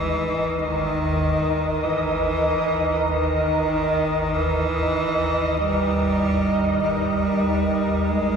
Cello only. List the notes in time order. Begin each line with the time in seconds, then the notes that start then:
Already playing: E3
0.60 D#3
1.83 E3
3.08 D#3
4.34 E3
5.57 G3
6.83 G3
8.09 G#3